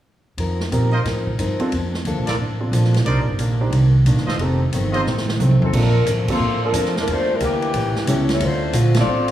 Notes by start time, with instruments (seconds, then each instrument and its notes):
0.38 upright bass F2, steel-string acoustic guitar F3 C4 D#4 A#4, ride
0.60 snare
0.71 upright bass A#2, steel-string acoustic guitar F3 C4 D#4 A#4, grand piano C4 D#4 G4 A#4, hi-hat pedal, ride
0.92 trumpet section F4 A#4 C5 D#5
1.05 upright bass A2, steel-string acoustic guitar F3 C4 D#4 A#4, snare, ride
1.27 kick
1.38 upright bass G2, steel-string acoustic guitar F3 C4 D#4 A#4, hi-hat pedal, ride
1.60 grand piano C4 D4 F4 A4, muted upright bass stroke, ride
1.71 upright bass F2, steel-string acoustic guitar F3 A#3 D4 A4, ride
1.94 snare
2.05 upright bass D2, steel-string acoustic guitar F3 A#3 D4 A4, hi-hat pedal, ride
2.17 upright bass A#1
2.27 upright bass A1, trumpet section F4 A4 A#4 D5, snare, ride
2.39 upright bass A1, steel-string acoustic guitar F3 A#3 D4 A4
2.60 grand piano C4 D4 F4 A4
2.72 upright bass A#1, steel-string acoustic guitar F3 A#3 D4 A4, hi-hat pedal, ride
2.84 snare
2.94 snare, ride
3.05 upright bass C2, steel-string acoustic guitar C3 D#3 A#3 D4, grand piano D4 D#4 G4 A#4, trumpet section D#4 A#4 C5 D5, ride
3.16 upright bass A#1
3.27 upright bass G1
3.38 upright bass A#1, steel-string acoustic guitar C3 D#3 A#3 D4, hi-hat pedal, ride
3.61 grand piano D4 D#4 G4 C5
3.70 upright bass C2, steel-string acoustic guitar C3 D#3 A#3 D4, ride
4.05 upright bass A#1, steel-string acoustic guitar C3 D#3 A#3 D4, hi-hat pedal, ride
4.16 upright bass G1, snare
4.26 upright bass D#1, trumpet section F4 A4 C5 D#5, snare
4.38 upright bass F1, steel-string acoustic guitar F2 D#3 A3, grand piano C4 D#4 G4 A4, ride
4.42 steel-string acoustic guitar C4
4.72 upright bass G1, steel-string acoustic guitar F2 D#3 A3 C4, hi-hat pedal, ride
4.93 grand piano C4 D#4 G4 C5, trumpet section F4 A4 C5 D#5, ride
5.06 upright bass A1, steel-string acoustic guitar F2 D#3 A3 C4, snare
5.17 snare
5.29 snare
5.39 upright bass C2, steel-string acoustic guitar F2 D#3 A3 C4, hi-hat pedal, high tom
5.51 high tom
5.61 saxophone section F3 C4 D#4 A4, muted upright bass stroke, floor tom
5.73 upright bass A#1, steel-string acoustic guitar A#2 F3 A3 D4, grand piano A#3 C4 D4 F4 A4, kick, crash
5.78 saxophone section F3 D4 A4 A#4
6.06 upright bass A1, steel-string acoustic guitar A#2 F3 A3 D4, hi-hat pedal, ride
6.28 grand piano A#3 C4 D4 F4 A4, muted upright bass stroke, kick, crash
6.33 saxophone section A#3 F4 A4 C5
6.40 upright bass A2, steel-string acoustic guitar A#2 F3 A3 D4
6.65 saxophone section F3 D4 A4 A#4
6.72 upright bass F2, steel-string acoustic guitar A#2 F3 A3 D4, hi-hat pedal, ride
6.85 snare
6.97 saxophone section F3 A3 D4 A#4, snare
7.07 upright bass E2, steel-string acoustic guitar E3 A#3 D4 G4, ride
7.12 saxophone section A3 D4 F4 C5
7.34 saxophone section G3 D4 E4 A#4
7.40 upright bass D2, steel-string acoustic guitar E3 A#3 D4 G4, hi-hat pedal, ride
7.45 saxophone section E3 A#3 D4 G4
7.62 ride
7.73 upright bass A1, steel-string acoustic guitar A2 G3 C#4 E4, ride
7.95 muted upright bass stroke, snare
8.06 upright bass C#2, steel-string acoustic guitar A2 G3 C#4 E4, grand piano G3 B3 C#4 E4, hi-hat pedal, ride
8.10 grand piano A4
8.29 snare, ride
8.33 saxophone section G3 C#4 E4 A4
8.40 upright bass D2, steel-string acoustic guitar D3 A3 C4 F4, ride
8.45 saxophone section A3 D4 F4 C5
8.73 upright bass A#1, steel-string acoustic guitar D3 A3 C4 F4, hi-hat pedal, ride
8.94 grand piano A3 C4 D4 F4 A4, snare, ride
8.99 saxophone section C4 F4 A4 D5
9.06 upright bass A1, steel-string acoustic guitar D3 A3 C4 F4
9.28 ride